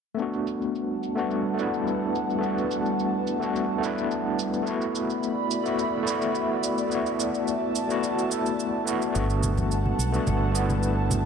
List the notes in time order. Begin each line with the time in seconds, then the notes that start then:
0.15 G3 A3 B3 F#5 A5, shaker
0.19 D4 F#4 B4
0.33 shaker
0.47 shaker
0.62 shaker
0.75 shaker
1.03 shaker
1.15 A3 B3 D4 F#4, shaker
1.31 shaker
1.54 A3 B3
1.59 D4 E4, shaker
1.74 shaker
1.87 shaker
2.15 shaker
2.30 shaker
2.38 A3 B3
2.43 D4 F#4, shaker
2.58 shaker
2.71 shaker
2.86 shaker
2.99 shaker
3.27 shaker
3.40 A3 B3 D4 F#4, shaker
3.56 shaker
3.78 A3 B3
3.83 D4 E4, shaker
3.98 shaker
4.11 shaker
4.39 shaker
4.54 shaker
4.62 A3 B3
4.67 E4 F#4 D5 E5 B5, shaker
4.82 shaker
4.95 shaker
5.10 shaker
5.23 shaker
5.51 shaker
5.63 A3 B3 E4, shaker
5.68 F#4
5.79 shaker
6.03 A3 B3
6.07 E4 F#4, shaker
6.22 shaker
6.35 shaker
6.63 shaker
6.78 shaker
6.87 A3 B3 A5
6.91 E4 F#4, shaker
7.06 shaker
7.20 shaker
7.35 shaker
7.47 shaker
7.75 shaker
7.88 A3 B3 E4 F#4, shaker
8.03 shaker
8.19 shaker
8.29 A3 B3 E4 A4, shaker
8.46 shaker
8.59 shaker
8.85 A3 B3 E4 F#4, shaker
9.02 shaker
9.12 G1 G3 A3 B3 B4 F#5 A5, shaker
9.16 D4 F#4
9.30 shaker
9.43 high conga, shaker
9.57 low conga, shaker
9.71 shaker
9.86 high conga
9.99 B1, shaker
10.12 A3 B3 D4 F#4, shaker
10.27 G1, high conga, shaker
10.52 A3 B3, shaker
10.57 D4 E4
10.70 high conga, shaker
10.83 shaker
11.11 high conga, shaker